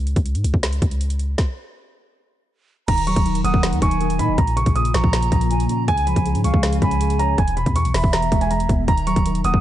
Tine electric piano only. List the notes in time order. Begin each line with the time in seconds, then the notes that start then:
2.88 D#3
3.07 F#3
3.26 D#3
3.44 A#3
3.63 D#3
3.82 D#4
4.01 D#3
4.19 D#5
4.38 A#2
4.57 C#3
4.76 A#2
4.95 F3
5.13 A#2
5.32 A#3
5.51 A#2
5.69 C#4
5.88 C#3
6.07 F3
6.26 C#3
6.44 G#3
6.63 C#3
6.82 C#4
7.01 C#3
7.19 C#5
7.38 E2
7.57 B2
7.76 E2
7.94 E3
8.13 E2
8.32 G#3
8.51 E2
8.69 B3
8.88 D#3
9.07 F#3
9.26 D#3
9.44 A#3